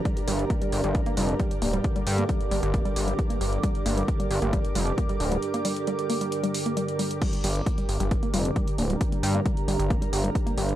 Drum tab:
CC |----------------|----------------|----------------|----------------|
HH |xxoxxxoxxxoxxxox|xxoxxxoxxxoxxxox|xxoxxxoxxxoxxxox|xxoxxxoxxxoxxxox|
BD |o---o---o---o---|o---o---o---o---|o---o---o---o---|----------------|

CC |x---------------|----------------|
HH |xxoxxxoxxxoxxxox|xxo-xxoxxxoxxxox|
BD |o---o---o---o---|o---o---o---o---|